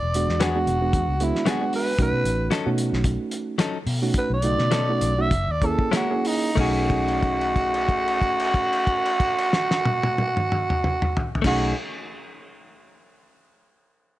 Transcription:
Already playing: D5
0.02 E1
0.14 G#3 B3 D4 F#4, closed hi-hat
0.28 E2, snare
0.40 F#3 B3 D4 F#4 G#4, snare, closed hi-hat
0.55 G#3 B3 D4 F#4
0.67 E1, closed hi-hat
0.82 G#3 B3 D4 F#4
0.93 E2, kick, closed hi-hat
1.08 C#2
1.20 G#3 B3 D4 E4 F#4, closed hi-hat
1.35 snare
1.46 F#3 G#3 B3 D4 F#4 G#4, snare, closed hi-hat
1.50 F#4
1.61 G#3 B3 D4 F#4
1.73 B4, open hi-hat
1.99 B1 A3 C#4 D#4 F#4 B4, kick, closed hi-hat
2.13 B2
2.25 A1, closed hi-hat
2.51 F#3 C#4 D#4 A4, snare, closed hi-hat
2.66 B2 A3 C#4 D#4 F#4
2.78 closed hi-hat
2.93 B1, snare
3.04 kick, closed hi-hat
3.31 closed hi-hat
3.58 F#3 C#4 D#4 A4, snare, closed hi-hat
3.86 B2, open hi-hat
4.02 A3 C#4 D#4 F#4
4.14 B4, kick, closed hi-hat
4.30 B1 D5
4.42 C#3 A3 D#4 F#4, closed hi-hat
4.59 B2, snare
4.71 F#3 C#4 D#4 A4, snare, closed hi-hat
4.89 A3 C#4 D#4 F#4
5.01 B1, closed hi-hat
5.19 A3 C#4 D#4 F#4 E5
5.31 F#1, kick, closed hi-hat
5.47 D#2
5.51 D5
5.62 A#3 C#4 E4 G#4, kick, closed hi-hat
5.66 A4
5.79 kick
5.91 G#3 A#3 C#4 E4 G#4 A#4, snare, closed hi-hat
5.96 F#4
6.11 A#3 C#4 E4 G#4
6.25 D#4, open hi-hat
6.55 B1 A3 C#4 D#4, kick, crash
6.60 F#4 G#4
6.90 kick, crash
7.08 crash
7.23 kick, crash
7.41 crash
7.56 kick, crash
7.74 crash
7.89 kick, crash
8.08 crash
8.22 kick, crash
8.39 crash
8.54 kick, crash
8.73 crash
8.87 kick, crash
9.05 crash
9.20 kick, crash
9.38 crash
9.53 snare
9.71 snare
9.85 high tom
10.03 high tom
10.18 high tom
10.37 mid tom
10.52 mid tom
10.70 mid tom
10.84 mid tom
11.02 mid tom
11.17 floor tom
11.35 floor tom
11.42 B1 A3 C#4 D#4, kick, snare, crash
11.46 D#4 F#4 G#4

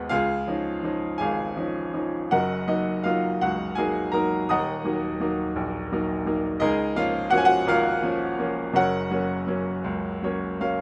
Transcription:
Already playing: G#1 D#2 G#2 G#3 B3 F#4 G#4 B4 D#5 F#5 G#5
0.09 C#2 F4 G#4 F5
0.47 F3 C#4 D#4
0.83 F3 C#4 D#4
1.18 G#1 G#4 F5 G#5
1.56 F3 C#4 D#4
1.93 F3 C#4 D#4
2.31 F#1 F#2 F#4 A#4 D#5 F#5
2.68 F#3 A#3 D#4 D#5
3.04 F#3 A#3 D#4 F4 F5
3.41 C#2 F#4 F#5
3.75 F#3 A#3 D#4 G#4 G#5
4.12 F#3 A#3 D#4 A#4 A#5
4.49 D#1 D#2 D#5 F#5 A#5 D#6
4.85 F#3 A#3 D#4
5.20 F#3 A#3 D#4
5.56 A#1
5.92 F#3 A#3 D#4
6.26 F#3 A#3 D#4
6.60 C#2 D#4 G#4 A#4 D#5
6.96 F3 A#3 C#4 F4 F5
7.30 F3 A#3 C#4 F#4 F#5
7.38 G#5
7.45 F#4 F#5
7.67 G#1 F4 A#4 F5
8.02 F3 A#3 C#4
8.39 F3 A#3 C#4
8.74 F#1 F#2 F#4 A#4 C#5 F#5
9.11 F#3 A#3 C#4
9.47 F#3 A#3 C#4
9.84 C#2
10.23 F#3 A#3 C#4 C#5
10.60 F#3 A#3 C#4 F5

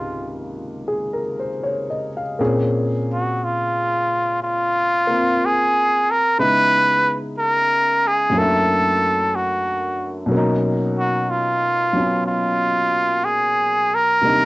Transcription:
Already playing: C#2 G#2 C3 D#3 A#3 F4
0.88 G#4
1.13 A#4
1.39 C5
1.63 C#5
1.90 D#5
2.17 F5
2.39 A#2 A#3 C4 C#4 G#4
3.13 F#4
3.44 F4
4.43 F4
5.07 A#3 C4 F4
5.45 G#4
6.11 A#4
6.39 C#3 G#3 B3 D#4 E4 B4
7.38 A#4
8.07 G#4
8.30 F#2 F#3
8.35 A3 A#3 A4
8.39 D4 E4
9.35 F#4
10.26 B2 F#3
10.32 A#3 C#4
10.37 D#4
10.99 F#4
11.30 F4
11.93 F#3 B3 C#4
12.27 F4
13.25 G#4
13.95 A#4
14.22 C3 G3 A#3 D4
14.26 D#4

